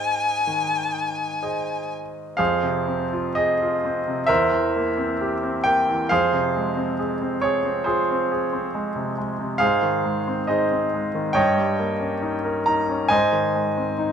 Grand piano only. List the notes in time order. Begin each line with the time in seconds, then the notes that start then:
Already playing: G#2 G#4 C5 D#5
0.47 D#3
1.42 G#4 C5 D#5
2.37 F2 G#4 C5 F5
2.63 C3
2.88 C4
3.13 F4
3.35 G#4 D#5
3.62 F4
3.85 C4
4.08 C3
4.27 E2 A#4 C5 E5
4.51 E3
4.76 A#3
4.98 C4
5.21 G4
5.44 C4
5.64 A#3 G5
5.89 E3
6.09 F2 G#4 C5 F5
6.33 C3
6.56 G#3
6.76 C4
6.99 G#4
7.22 C4
7.42 G#4 C#5
7.65 C4
7.84 F4 G#4 C5
8.11 C4
8.32 G#4
8.53 C4
8.75 G#3
8.96 C3
9.18 G#3
9.39 C3
9.58 G#2 G#4 C5 F5
9.83 D#3
10.05 G#3
10.28 C4
10.47 D#4 G#4 C5 D#5
10.71 C4
10.94 G#3
11.15 D#3
11.33 G2 C#5 D#5 G5
11.57 G3
11.79 A#3
11.99 C#4
12.22 D#4
12.45 A#4
12.66 D#4 A#5
12.89 C#4
13.09 G#2 C5 D#5 G#5
13.32 D#3
13.56 G#3
13.78 C4
13.99 D#4